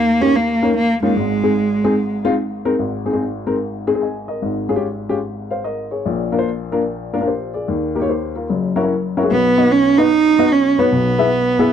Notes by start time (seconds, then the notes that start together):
Already playing: D#2 D#3 A#3
0.21 A#3 C#4 D#4 G4
0.36 A#3
0.62 A#3 C#4 D#4 A#4
0.77 A#3
1.03 G#3 A#3 C#4 D#4 F4
1.16 G#1 G#2
1.43 G#3 C4 D#4 G#4
1.84 G#3 C4 D#4 G#4
2.24 G#3 C4 D#4 F4
2.65 G#3 C4 D#4 A#4
2.79 G#1 G#2
3.05 G#3 C4 D#4 G#4
3.13 G#3 C4 D#4 G#4
3.47 G#3 C4 D#4 A#4
3.87 G#3 C4 D#4 G#4
3.94 G#3 C4 D#4 G#4
4.01 D#5 G#5
4.28 A#4 D#5
4.42 G#1 G#2
4.69 G#3 C#4 F4 G#4
4.76 G#3 C#4 F4 G4
5.09 G#3 C#4 F4 G4
5.51 C5 F5
5.64 A#4 D#5
5.91 G#4 C#5
6.06 A#1 A#2
6.32 A#3 D4 F4 A#4
6.38 A#3 D4 F4 C5
6.72 A#3 D4 F4 A#4
7.13 A#3 D4 F4 A#4
7.21 A#3 D4 F4 A#4
7.27 G4 C5
7.54 G#4 D5
7.68 D#2 D#3
7.95 A#3 D#4 G4 A#4
8.01 A#3 D#4 G4 C#5
8.09 G4 C5
8.36 F4 A#4
8.49 F#1 F#2
8.76 C#4 E4 F#4 A#4
8.83 C#4 E4 F#4 A#4
9.17 C#4 E4 F#4 A#4
9.23 C#4 E4 F#4 G#4
9.31 B1 B2 B3
9.58 B3 D#4 F#4 B4 D#5
9.72 C#4
9.98 B3 D#4 F#4 B4 D#5
10.39 B3 D#4 F#4 B4 D#5
10.52 C#4
10.79 B3 D#4 F#4 B4 C#5
10.92 B1 B2
11.19 B3 E4 G#4 B4 E5
11.59 B3 E4 G#4 B4 E5